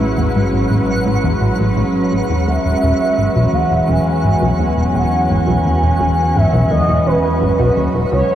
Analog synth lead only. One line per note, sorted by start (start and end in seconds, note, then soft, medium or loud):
2.47 3.55 E5 loud
3.53 3.90 F#5 loud
3.89 4.96 G#5 loud
4.94 5.31 F#5 loud
5.30 6.37 G#5 loud
6.36 6.71 E5 loud
6.71 7.08 D#5 loud
7.07 7.77 B4 medium
8.13 8.35 C#5 loud